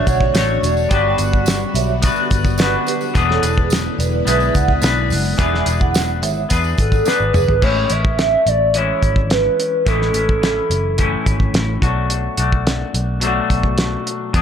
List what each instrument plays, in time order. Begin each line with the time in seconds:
Already playing: string machine D3 A3 D4 F#4, clean electric guitar F#3 A3 D4 F#4 C#5
0.07 picked electric bass B1, soft synth lead C#5, vibraphone D5 F#5, kick, closed hi-hat, tambourine
0.21 kick
0.34 picked electric bass A1, clean electric guitar A3 D4 F#4 C#5, snare, closed hi-hat, tambourine
0.63 picked electric bass E1, soft synth lead D5, closed hi-hat, tambourine
0.77 tambourine
0.89 picked electric bass G1, string machine D3 G3 B3, clean electric guitar G3 B3 D4, vibraphone D5 G5, kick, closed hi-hat, tambourine
0.93 clean electric guitar F#4 B4
1.18 picked electric bass G1, closed hi-hat, tambourine
1.32 vibraphone D5 F#5, kick
1.46 snare, closed hi-hat, tambourine
1.74 picked electric bass B1, vibraphone C#5 E5, closed hi-hat, tambourine
2.02 clean electric guitar B3 D4 F#4 B4, kick, closed hi-hat, tambourine
2.16 tambourine
2.30 picked electric bass G1, kick, closed hi-hat, tambourine
2.44 kick, tambourine
2.58 clean electric guitar B3 D4 F#4 B4, vibraphone B4 D5, snare, closed hi-hat, tambourine
2.87 vibraphone G4 B4, closed hi-hat, tambourine
3.01 tambourine
3.14 picked electric bass E1, clean electric guitar E3 B3 D4 G#4 B4, string machine G#3 E4, kick, closed hi-hat, tambourine
3.29 vibraphone A4 C#5, snare
3.42 picked electric bass E1, clean electric guitar D4 G#4 B4, closed hi-hat, tambourine
3.57 vibraphone G#4 B4, kick
3.70 snare, closed hi-hat, tambourine
3.99 picked electric bass E1, vibraphone B4 D5, closed hi-hat, tambourine
4.25 picked electric bass B1, clean electric guitar B3 D4 G#4 B4, vibraphone B4 E5, closed hi-hat, tambourine
4.40 tambourine
4.54 picked electric bass C#2, vibraphone D5 F#5, kick, closed hi-hat, tambourine
4.68 kick
4.81 picked electric bass B1, clean electric guitar B3 D4 G#4 B4, snare, closed hi-hat, tambourine
5.10 picked electric bass F#1, open hi-hat, tambourine
5.25 tambourine
5.37 picked electric bass E1, clean electric guitar E3 B3 D4 G#4 B4, vibraphone E5 G#5, kick, closed hi-hat, tambourine
5.54 snare
5.65 picked electric bass E1, clean electric guitar D4 G#4 B4, closed hi-hat, tambourine
5.80 vibraphone D5 F#5, kick
5.94 snare, closed hi-hat, tambourine
6.22 picked electric bass G#1, vibraphone C#5 E5, closed hi-hat, tambourine
6.49 picked electric bass E2, clean electric guitar B3 D4 G#4 B4, kick, closed hi-hat, tambourine
6.64 tambourine
6.78 picked electric bass G#1, soft synth lead A4, kick, closed hi-hat, tambourine
6.92 kick, tambourine
7.05 clean electric guitar B3 D4 G#4 B4, vibraphone B4 D5, soft synth lead B4, snare, tambourine
7.20 picked electric bass G#1
7.33 picked electric bass F#1, vibraphone G#4 B4, mid tom, tambourine
7.48 picked electric bass G#1, floor tom
7.62 picked electric bass A1, clean electric guitar A2 E3 G#3 C#4 E4, soft synth lead C#5, kick, crash
7.89 picked electric bass A1, clean electric guitar G#3 C#4 E4, soft synth lead E5, closed hi-hat
8.05 kick
8.19 soft synth lead E5, snare, closed hi-hat
8.46 picked electric bass A1, soft synth lead D5, closed hi-hat
8.74 clean electric guitar E3 G#3 C#4, soft synth lead C#5, closed hi-hat
8.78 clean electric guitar E4
9.03 picked electric bass G#1, kick, closed hi-hat
9.16 kick
9.30 soft synth lead B4, snare, closed hi-hat
9.60 closed hi-hat
9.86 picked electric bass A1, clean electric guitar A2 E3 G#3 C#4 E4, soft synth lead A4, kick, closed hi-hat
10.02 snare
10.13 picked electric bass A1, clean electric guitar G#3 C#4 E4, closed hi-hat
10.29 kick
10.42 clean electric guitar E3 C#4 E4, snare, closed hi-hat
10.70 picked electric bass F#1, closed hi-hat
10.98 clean electric guitar A2 E3 C#4 E4, kick, closed hi-hat
11.26 picked electric bass G#1, kick, closed hi-hat
11.40 kick
11.54 picked electric bass A1, snare, closed hi-hat
11.82 picked electric bass B1, clean electric guitar B2 F#3 A3 D4 F#4, kick, closed hi-hat
12.10 closed hi-hat
12.37 picked electric bass B1, clean electric guitar A3 D4 F#4, closed hi-hat
12.53 kick
12.67 snare, closed hi-hat
12.94 picked electric bass B1, closed hi-hat
13.20 clean electric guitar B2 F#3 A3, closed hi-hat
13.24 clean electric guitar D4 F#4
13.50 picked electric bass B1, kick, closed hi-hat
13.63 kick
13.78 snare, closed hi-hat
14.07 closed hi-hat
14.33 picked electric bass E2, clean electric guitar E3 B3 D4 G#4, kick, closed hi-hat